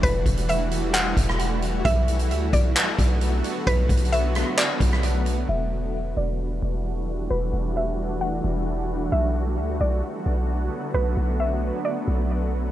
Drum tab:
HH |x-----x--x--x-----x-----x-----x-----x-----x-----|x-----x--x--x-----x-----x-----x-----x-----x-----|x-----x-x-x-x-----x-----x-----x-----x-----x-----|------------------------------------------------|
CP |------------------------x-----------------------|------------------------x-----------------------|------------------------x-----------------------|------------------------------------------------|
SD |---------------------------------r--------------|------------------------------------------------|------------------r--------------r--------------|------------------------------------------------|
BD |o-----o-----------------------o-----------------|o-----------------o-----------o-----------------|o-----o-----------------------o-----------------|------------------------------------------------|

HH |------------------------------------------------|------------------------------------------------|------------------------------------------------|
CP |------------------------------------------------|------------------------------------------------|------------------------------------------------|
SD |------------------------------------------------|------------------------------------------------|------------------------------------------------|
BD |------------------------------------------------|------------------------------------------------|------------------------------------------------|